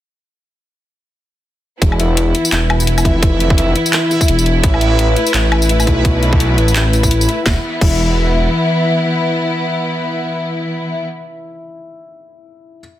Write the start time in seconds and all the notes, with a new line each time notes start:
1.81 E1 E3 B3 E4 E5, kick, closed hi-hat
1.92 low woodblock
1.99 E4, closed hi-hat
2.17 closed hi-hat
2.35 closed hi-hat
2.45 tambourine
2.52 E1 E4, clap, closed hi-hat
2.70 low woodblock
2.80 tambourine
2.87 closed hi-hat
2.98 tambourine, low woodblock
3.05 F1 E4, kick, closed hi-hat
3.23 kick, closed hi-hat
3.40 closed hi-hat
3.50 kick
3.58 E4, closed hi-hat
3.76 closed hi-hat
3.86 tambourine
3.93 clap, closed hi-hat
4.11 E4, tambourine
4.21 kick, tambourine
4.28 E1, closed hi-hat
4.39 tambourine
4.46 closed hi-hat
4.63 A1 A3 E4 B4, kick, closed hi-hat
4.74 low woodblock
4.81 closed hi-hat
4.99 closed hi-hat
5.16 E4, closed hi-hat
5.27 tambourine
5.34 A1, clap, closed hi-hat
5.52 low woodblock
5.62 tambourine
5.69 E4, closed hi-hat
5.80 tambourine, low woodblock
5.87 B1, kick, closed hi-hat
6.05 kick, closed hi-hat
6.22 E4, closed hi-hat
6.33 kick
6.40 closed hi-hat
6.58 A1, closed hi-hat
6.68 tambourine
6.75 E4, clap, closed hi-hat
6.93 closed hi-hat, tambourine
7.03 kick, tambourine
7.11 closed hi-hat
7.21 tambourine
7.28 E4, closed hi-hat
7.46 E1 E3 B3 E4, kick, snare
7.81 E1 E4, kick, crash